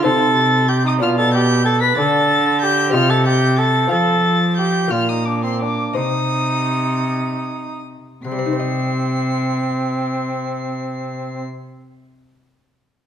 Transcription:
<<
  \new Staff \with { instrumentName = "Violin" } { \time 6/8 \key c \dorian \tempo 4. = 56 a'''4 g'''16 ees'''16 f'''16 a'''16 g'''8 a'''16 b'''16 | a'''4 g'''8 f'''16 a'''16 g'''8 a'''8 | a'''4 g'''8 f'''16 ees'''16 d'''16 c'''16 d'''8 | ees'''2~ ees'''8 r8 |
c''''2.~ | c''''2. | }
  \new Staff \with { instrumentName = "Cor anglais" } { \time 6/8 \key c \dorian a'4 g'16 ees'16 f'16 a'16 g'8 a'16 b'16 | a'4 g'8 f'16 a'16 g'8 a'8 | a'4 g'8 f'16 ees'16 d'16 c'16 d'8 | ees'2~ ees'8 r8 |
c'2.~ | c'2. | }
  \new Staff \with { instrumentName = "Lute" } { \time 6/8 \key c \dorian <ees' c''>4. <d' d''>4. | <d' d''>4. <c' g' ees''>4. | <c' f' f''>4. <bes f' f''>4. | <ees' c''>2. |
<c g c' ees' c'' ees''>2.~ | <c g c' ees' c'' ees''>2. | }
  \new Staff \with { instrumentName = "Lute" } { \clef bass \time 6/8 \key c \dorian c4. b,4. | d4. c4. | f4. bes,4. | c2~ c8 r8 |
r2. | r2. | }
  \new Staff \with { instrumentName = "Cello" } { \clef bass \time 6/8 \key c \dorian c4. b,4. | d4. c4. | f4. bes,4. | c2~ c8 r8 |
c2.~ | c2. | }
>>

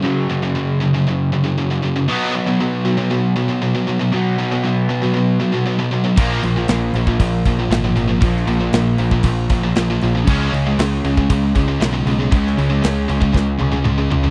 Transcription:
<<
  \new Staff \with { instrumentName = "Overdriven electric guitar" } { \clef bass \time 4/4 \key bes \phrygian \tempo 4 = 117 <ges, des ges>1 | <b, fis b>1 | <b, fis b>1 | <bes, f bes>1 |
<bes, f bes>1 | <des aes des'>1 | <des aes des'>1 | }
  \new Staff \with { instrumentName = "Distorted electric guitar" } { \clef bass \time 4/4 \key bes \phrygian <ges, des>8 <ges, des>16 <ges, des>16 <ges, des>8 <ges, des>16 <ges, des>16 <ges, des>8 <ges, des>16 <ges, des>16 <ges, des>16 <ges, des>16 <ges, des>16 <ges, des>16 | <b, fis b>8 <b, fis>16 <b, fis>16 <b, fis>8 <b, fis>16 <b, fis>16 <b, fis>8 <b, fis>16 <b, fis>16 <b, fis>16 <b, fis>16 <b, fis>16 <b, fis>16 | <b, fis>8 <b, fis>16 <b, fis>16 <b, fis>8 <b, fis>16 <b, fis>16 <b, fis>8 <b, fis>16 <b, fis>16 <b, fis>16 <b, fis>16 <b, fis>16 <b, fis>16 | <bes, f bes>8 <bes, f>16 <bes, f>16 <bes, f>8 <bes, f>16 <bes, f>16 <bes, f>8 <bes, f>16 <bes, f>16 <bes, f>16 <bes, f>16 <bes, f>16 <bes, f>16 |
<bes, f>8 <bes, f>16 <bes, f>16 <bes, f>8 <bes, f>16 <bes, f>16 <bes, f>8 <bes, f>16 <bes, f>16 <bes, f>16 <bes, f>16 <bes, f>16 <bes, f>16 | <des aes des'>8 <des aes>16 <des aes>16 <des aes>8 <des aes>16 <des aes>16 <des aes>8 <des aes>16 <des aes>16 <des aes>16 <des aes>16 <des aes>16 <des aes>16 | <des aes>8 <des aes>16 <des aes>16 <des aes>8 <des aes>16 <des aes>16 <des aes>8 <des aes>16 <des aes>16 <des aes>16 <des aes>16 <des aes>16 <des aes>16 | }
  \new Staff \with { instrumentName = "Distorted electric guitar" } { \clef bass \time 4/4 \key bes \phrygian <ges, des>8 <ges, des>16 <ges, des>16 <ges, des>8 <ges, des>16 <ges, des>16 <ges, des>8 <ges, des>16 <ges, des>16 <ges, des>16 <ges, des>16 <ges, des>16 <ges, des>16 | <b, fis b>8 <b, fis>16 <b, fis>16 <b, fis>8 <b, fis>16 <b, fis>16 <b, fis>8 <b, fis>16 <b, fis>16 <b, fis>16 <b, fis>16 <b, fis>16 <b, fis>16 | <b, fis>8 <b, fis>16 <b, fis>16 <b, fis>8 <b, fis>16 <b, fis>16 <b, fis>8 <b, fis>16 <b, fis>16 <b, fis>16 <b, fis>16 <b, fis>16 <b, fis>16 | <bes, f bes>8 <bes, f>16 <bes, f>16 <bes, f>8 <bes, f>16 <bes, f>16 <bes, f>8 <bes, f>16 <bes, f>16 <bes, f>16 <bes, f>16 <bes, f>16 <bes, f>16 |
<bes, f>8 <bes, f>16 <bes, f>16 <bes, f>8 <bes, f>16 <bes, f>16 <bes, f>8 <bes, f>16 <bes, f>16 <bes, f>16 <bes, f>16 <bes, f>16 <bes, f>16 | <des aes des'>8 <des aes>16 <des aes>16 <des aes>8 <des aes>16 <des aes>16 <des aes>8 <des aes>16 <des aes>16 <des aes>16 <des aes>16 <des aes>16 <des aes>16 | <des aes>8 <des aes>16 <des aes>16 <des aes>8 <des aes>16 <des aes>16 <des aes>8 <des aes>16 <des aes>16 <des aes>16 <des aes>16 <des aes>16 <des aes>16 | }
  \new Staff \with { instrumentName = "Picked electric bass" } { \clef bass \time 4/4 \key bes \phrygian r1 | r1 | r1 | bes,,8 bes,,8 bes,,8 bes,,8 bes,,8 bes,,8 aes,,8 aes,,8 |
bes,,8 bes,,8 bes,,8 bes,,8 bes,,8 bes,,8 bes,,8 bes,,8 | des,8 des,8 des,8 des,8 des,8 des,8 ces,8 ces,8 | des,8 des,8 des,8 des,8 des,8 des,8 des,8 des,8 | }
  \new DrumStaff \with { instrumentName = "Drums" } \drummode { \time 4/4 r4 r4 r4 r4 | r4 r4 r4 r4 | r4 r4 r4 r4 | <cymc bd>8 cymc8 <cymc sn>8 cymc16 bd16 <cymc bd>8 <cymc bd>8 <cymc sn>8 cymc8 |
<cymc bd>16 sn16 cymc8 <cymc sn>8 cymc16 bd16 <cymc bd>8 <cymc bd>8 <cymc sn>8 cymc8 | <cymc bd>8 cymc8 <cymc sn>8 cymc16 bd16 <cymc bd>8 <cymc bd>8 <cymc sn>8 cymc8 | <cymc bd>16 sn16 cymc8 <cymc sn>8 cymc16 bd16 <bd sn>8 tommh16 tommh16 toml8 tomfh16 tomfh16 | }
>>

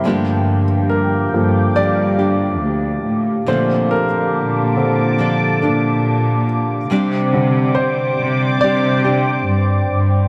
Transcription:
<<
  \new Staff \with { instrumentName = "Analog synth pad" } { \time 4/4 \key g \dorian \tempo 4 = 70 << { <g'' d'''>1 | <a'' d'''>1 | <g'' d'''>1 | } \\ { <g' f''>1~ | <g' f''>1 | <c'' d''>1 | } >> }
  \new Staff \with { instrumentName = "Grand piano" } { \time 4/4 \key g \dorian r4 bes'4 d''2 | c''8 bes'2. r8 | r4 c''4 d''2 | }
  \new Staff \with { instrumentName = "Grand piano" } { \time 4/4 \key g \dorian <f a bes>8 r4 <f bes a'>8 r2 | <d a c'>8 r4 <d c' a'>8 r2 | r8 <d g c'>2.~ <d g c'>8 | }
  \new Staff \with { instrumentName = "Nylon-string guitar" } { \time 4/4 \key g \dorian <g, d f bes d' g'>2 <f bes d' g'>8 <f d' g'>4. | <bes, d f bes d' a'>2 <f bes d' a'>8 <f bes d' a'>4. | <c g c' d' g'>2 <g c' d' g'>8 <c' d' g'>4. | }
  \new Staff \with { instrumentName = "Cello section" } { \clef bass \time 4/4 \key g \dorian g,4. g,8 g,4 d,8 a,8 | bes,8. bes,4.~ bes,16 bes,4. | c4. c8 c4 g,8 g,8 | }
>>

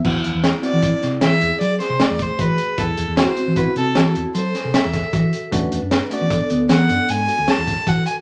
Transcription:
<<
  \new Staff \with { instrumentName = "Violin" } { \time 7/4 \key a \major \tempo 4 = 154 r4. d''4 r8 e''4 d''8 c''8 d''8 c''8 b'4 | a'4 c''4 b'8 a'4 r8 c''4 e''4. r8 | r4. d''4 r8 fis''4 gis''4 a''4 fis''8 gis''8 | }
  \new Staff \with { instrumentName = "Vibraphone" } { \time 7/4 \key a \major e'2. gis'1~ | gis'4 fis'2. a'2. | b'2 a'1~ a'4 | }
  \new Staff \with { instrumentName = "Synth pluck" } { \time 7/4 \key a \major e'8 e'8 e'8 c'8 e'8 c'8 c'8 e'4 gis'8 a4 fis'4 | e'8 e'8 e'8 c'8 e'8 c'8 c'8 e'4 gis'8 a'4 fis'4 | d'8 d'8 d'8 b8 d'8 b8 b8 d'4 fis'8 a'4 fis'4 | }
  \new Staff \with { instrumentName = "Tine electric piano" } { \time 7/4 \key a \major <b c' e' fis'>8 r4 <b c' e' fis'>8 r1 r4 | r4 <b c' e' fis'>8 r8 <b c' e' fis'>8 r1 r8 | <a cis' d' fis'>8 r4 <a cis' d' fis'>8 r1 r4 | }
  \new Staff \with { instrumentName = "Fingered electric bass" } { \clef bass \time 7/4 \key a \major e,8 e,16 e,8 r8 e8 r16 c8 e8 e,16 r16 fis8 r16 c16 r16 e,8 r16 e8 r8 | e,8 e,16 e,8 r8 e8 r16 c8 e8 e,16 r16 fis8 r16 c16 r16 e,8 r16 e8 r8 | e,8 e,16 fis,8 r8 e8 r16 d,8 e8 fis,16 r16 gis,8 r16 d,16 r16 e,8 r16 e8 r8 | }
  \new DrumStaff \with { instrumentName = "Drums" } \drummode { \time 7/4 <cymc bd>8 hh8 <hh sn>8 hh8 <hh bd>8 <hh sn>8 <hh sn>8 hh8 hh8 <hh sn>8 <hh sn>8 <hh bd>8 <hh bd>8 hh8 | <hh bd>8 hh8 <hh sn>8 hh8 <hh bd>8 hh8 <hh sn>8 hh8 hh8 <hh sn>8 <hh sn>8 <hh bd sn>8 <hh bd>8 hh8 | <hh bd>8 hh8 <hh sn>8 hh8 <hh bd>8 hh8 <hh sn>8 hh8 hh8 hh8 <hh sn>8 <hh bd sn>8 <hh bd>8 hh8 | }
>>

